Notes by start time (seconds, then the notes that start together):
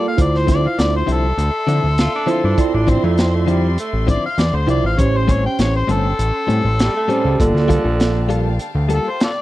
Already playing: A#3 F4 A4 D5 F5 G5
0.08 F5
0.17 D2 E4 F4 C5 D5 E5 C6, kick, closed hi-hat
0.21 D5
0.35 C5, snare
0.47 D3 F3 C4 E4, kick, snare, closed hi-hat
0.51 D5
0.67 F5
0.79 D2 D5, snare, closed hi-hat
0.96 C5
1.06 C2 D3 F3 C4 E4, closed hi-hat
1.12 A4
1.38 D2, closed hi-hat
1.67 D3 F3 C4 E4, closed hi-hat
1.84 D2
1.98 F4, snare, closed hi-hat
2.15 D4
2.27 D3 F3 C4 E4 F4 C5, closed hi-hat
2.44 G2 D4
2.57 C4 E4 F4 D5, kick, closed hi-hat
2.74 A1 D4
2.87 D3 F3 C4 E4, kick, closed hi-hat
3.04 F2 A3
3.18 C4, snare, closed hi-hat
3.35 A3
3.46 D3 F3 G3 C4 E4, closed hi-hat
3.78 A3, closed hi-hat
3.93 A1
4.07 D3 F3 C4 E4 D5, kick, closed hi-hat
4.26 F5
4.38 E2 D5, snare, closed hi-hat
4.53 D2 C5
4.67 C2 D3 F3 C4 E4 F4 C5 D5, closed hi-hat
4.83 A1 F5
4.97 A1 C#4 G4 C5 C#5 G5, kick, closed hi-hat
5.17 C5
5.27 A2 G3 C4 C#4, kick, closed hi-hat
5.32 C#5
5.46 G5
5.59 A1 C#5, snare, closed hi-hat
5.76 C5
5.87 G1 A2 G3 C4 C#4, closed hi-hat
5.92 A4
6.19 A1, closed hi-hat
6.47 A2 G3 C4 C#4, closed hi-hat
6.65 A1
6.79 G3, snare, closed hi-hat
6.96 A3
7.08 A2 G3 C4 C#4 G4 C5, closed hi-hat
7.25 C#2
7.40 G1 D3 A#3 F4 A4 F5 G5 A5, kick, closed hi-hat
7.54 D2, snare
7.68 G3 A#3 F4 A4, kick, closed hi-hat
7.84 A#1
8.00 snare, closed hi-hat
8.29 G3 A#3 F4 A4, closed hi-hat
8.59 closed hi-hat
8.75 D2
8.89 G3 A#3 F4 A4, closed hi-hat
8.94 A4
9.09 C5
9.20 F4 A4 D5, snare, closed hi-hat